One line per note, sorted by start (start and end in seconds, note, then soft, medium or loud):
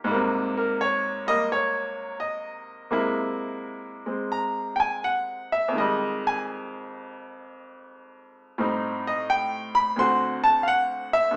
0.00 0.10 D#3 soft
0.00 0.13 F4 medium
0.00 0.11 G4 soft
0.04 2.86 G#2 medium
0.04 1.25 G3 medium
0.11 2.89 C3 medium
0.11 1.28 A#3 medium
0.57 0.79 A#4 medium
0.81 1.26 C#5 medium
1.27 2.89 G3 soft
1.27 2.90 A#3 medium
1.27 1.49 D#5 loud
1.52 2.16 C#5 medium
2.20 3.34 D#5 medium
2.91 5.76 C3 medium
2.91 4.05 G#3 medium
2.91 5.77 A#3 medium
2.91 5.78 E4 medium
4.06 5.75 G#3 soft
4.06 5.76 C4 soft
4.32 4.79 A#5 medium
4.76 4.79 G5 medium
4.80 5.02 G#5 medium
5.04 5.52 F#5 medium
5.52 5.75 E5 medium
5.68 8.55 F2 medium
5.72 8.57 D#3 soft
5.77 8.58 G3 medium
5.77 8.59 G#3 medium
5.77 6.24 D#5 medium
6.27 6.40 G#5 medium
8.58 9.98 A2 medium
8.58 9.99 G3 medium
8.58 9.98 C4 medium
8.58 9.99 D#4 medium
9.07 9.28 D#5 medium
9.30 9.75 G5 medium
9.75 9.97 B5 loud
9.96 11.35 D2 medium
9.96 11.33 D3 medium
9.96 11.36 C4 medium
9.96 10.45 C6 loud
10.00 11.36 F#4 medium
10.44 10.66 A5 loud
10.63 10.69 F5 medium
10.68 11.13 F#5 medium
11.13 11.35 E5 loud
11.31 11.36 G2 medium